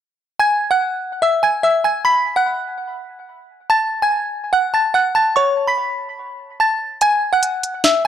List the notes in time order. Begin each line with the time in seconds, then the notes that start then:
0.39 G#5 G#6
0.71 F#5 F#6
1.22 E5 E6
1.43 G#5 G#6
1.63 E5 E6
1.84 G#5 G#6
2.05 B5 B6
2.36 F#5 F#6
3.70 A5 A6
4.02 G#5 G#6
4.53 F#5 F#6
4.74 A5 A6
4.94 F#5 F#6
5.15 A5 A6
5.36 C#5 C#6
5.67 B5 B6
6.60 A5 A6
7.01 G#5 G#6, closed hi-hat
7.33 F#5 F#6
7.43 closed hi-hat
7.63 closed hi-hat
7.84 E5 E6, snare, closed hi-hat